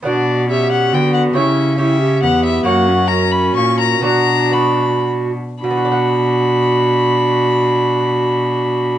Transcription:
<<
  \new Staff \with { instrumentName = "Violin" } { \time 3/4 \key b \minor \tempo 4 = 123 d''4 e''8 fis''8 g''8 fis''8 | e''4 e''4 fis''8 e''8 | fis''4 ais''8 b''8 cis'''8 ais''8 | ais''4 b''4 r4 |
b''2.~ | b''2. | }
  \new Staff \with { instrumentName = "Lute" } { \time 3/4 \key b \minor <b d'' fis''>2. | <g' cis''>4 <g' cis''>2 | <ais fis' cis''>2. | <b fis' d''>4 <b fis' d''>2 |
<b, b fis' d'' fis''>2.~ | <b, b fis' d'' fis''>2. | }
  \new Staff \with { instrumentName = "Lute" } { \clef bass \time 3/4 \key b \minor b,2 d4 | cis2 e,4 | fis,2 ais,4 | b,2~ b,8 r8 |
r2. | r2. | }
  \new Staff \with { instrumentName = "Recorder" } { \time 3/4 \key b \minor fis'4 g'4 fis'4 | e'4 e'8 g'4. | fis'4 fis'2 | fis'2~ fis'8 r8 |
fis'2.~ | fis'2. | }
  \new Staff \with { instrumentName = "Viola" } { \time 3/4 \key b \minor d'4 cis'4 b4 | cis'4 cis'4 b4 | ais8 cis'2~ cis'8 | d'2~ d'8 r8 |
d'2.~ | d'2. | }
  \new Staff \with { instrumentName = "Cello" } { \clef bass \time 3/4 \key b \minor b,2 d4 | cis2 e,4 | fis,2 ais,4 | b,2~ b,8 r8 |
b,2.~ | b,2. | }
>>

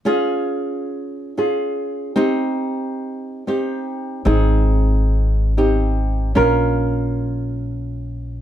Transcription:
<<
  \new Staff \with { instrumentName = "Nylon-string guitar" } { \time 4/4 \key des \lydian \tempo 4 = 114 <des' f' aes'>2~ <des' f' aes'>8 <des' f' aes'>4. | <c' ees' g'>2~ <c' ees' g'>8 <c' ees' g'>4. | <c' ees' aes'>2~ <c' ees' aes'>8 <c' ees' g'>4. | <des' f' bes'>1 | }
  \new Staff \with { instrumentName = "Upright bass" } { \clef bass \time 4/4 \key des \lydian r1 | r1 | aes,,1 | bes,,1 | }
>>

